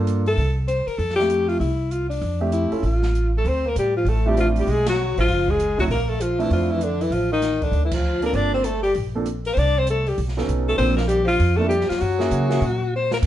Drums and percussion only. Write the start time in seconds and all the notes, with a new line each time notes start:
0.07 closed hi-hat
0.26 open hi-hat
0.37 open hi-hat
0.68 closed hi-hat
0.88 open hi-hat
0.99 open hi-hat
1.10 snare
1.20 snare
1.30 closed hi-hat
1.49 open hi-hat
1.61 open hi-hat
1.91 closed hi-hat
2.11 open hi-hat
2.22 open hi-hat
2.52 closed hi-hat
2.72 open hi-hat
2.84 open hi-hat
3.03 snare
3.15 closed hi-hat
3.46 open hi-hat
3.76 closed hi-hat
4.06 open hi-hat
4.37 closed hi-hat
4.56 open hi-hat
4.67 open hi-hat
4.86 snare, ride
5.17 open hi-hat
5.29 open hi-hat
5.48 kick
5.60 closed hi-hat
5.79 kick, open hi-hat
5.91 open hi-hat
6.21 closed hi-hat
6.40 open hi-hat
6.51 open hi-hat
6.81 closed hi-hat
7.01 open hi-hat
7.12 open hi-hat
7.42 snare, closed hi-hat
7.61 kick, open hi-hat
7.73 open hi-hat
7.91 kick, crash
8.22 open hi-hat
8.34 open hi-hat
8.64 closed hi-hat
8.84 open hi-hat
8.95 open hi-hat
9.26 closed hi-hat
9.45 open hi-hat
9.57 open hi-hat
9.87 closed hi-hat
10.06 open hi-hat
10.18 open hi-hat
10.28 snare
10.38 snare
10.49 closed hi-hat
10.79 open hi-hat
10.98 snare
11.09 closed hi-hat
11.29 open hi-hat
11.40 open hi-hat
11.71 closed hi-hat
11.81 snare
11.90 snare, open hi-hat
12.01 open hi-hat
12.20 snare
12.31 closed hi-hat
12.51 snare, open hi-hat
12.62 open hi-hat
13.11 snare
13.23 kick, crash